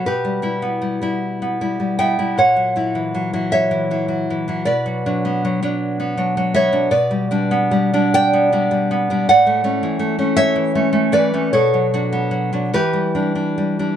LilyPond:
\new Staff \with { instrumentName = "Nylon-string guitar" } { \time 6/8 \key b \minor \tempo 4. = 52 << { <g' b'>2~ <g' b'>8 <e'' g''>8 | <cis'' fis''>4. <cis'' e''>4. | <b' d''>2~ <b' d''>8 <cis'' e''>8 | \key g \lydian <b' d''>4. <d'' g''>4. |
<d'' fis''>4. <cis'' e''>4 <b' d''>8 | <a' cis''>4. <g' b'>4. | } \\ { b,16 g16 <g e'>16 b16 g16 <g e'>8 b16 <g e'>16 g16 b16 <g e'>16 | ais,16 fis16 <fis e'>16 e16 fis16 <fis e'>8 e16 <fis e'>16 fis16 e16 <fis e'>16 | b,16 fis16 <fis d'>16 b16 fis16 <fis d'>8 b16 <fis d'>16 fis16 b16 <fis d'>16 | b,16 g16 <g d'>16 b16 g16 <g d'>8 b16 <g d'>16 g16 b16 <g d'>16 |
a,16 a16 <a cis'>16 e16 a16 <a cis'>8 e16 <a cis'>16 a16 e16 <a cis'>16 | b,16 fis16 <fis d'>16 b16 fis16 <fis d'>16 e16 g16 <g d'>16 d'16 g16 <g d'>16 | } >> }